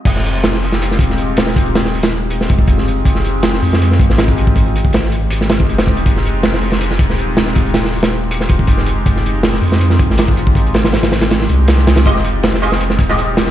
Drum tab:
CC |x---------------|----------------|----------------|----------------|
HH |x-x-x-o-x-x-x-x-|xxx-ox--x-x-x-x-|x-x-x-o-x-x-x-x-|xxx-x-x-x-x-xx-x|
SD |-o--oo-o-o-o--oo|--oo-o---o---o--|-o--oo-o-o-oo---|----oo---oo--o--|
BD |o---------o-----|o---------ooo---|o---------o--o-o|o--o-------o--o-|

CC |----------------|----------------|----------------|----------------|
HH |x-x-x-o-x-x-x-x-|xxx-ox--x-x-x-x-|x-x-x-o-x-x-x-x-|xxxxxxxxx-x-x-xx|
SD |-o--oo-o-o-o--oo|--oo-o---o---o--|-o--oo-o-o-oo---|--oooooooo--oooo|
BD |o---------o-----|o---------ooo---|o---------o--o-o|o---------------|

CC |----------------|
HH |x-x-x-o-x-x-x-x-|
SD |-o--oo-o-o-o--oo|
BD |o---------o-----|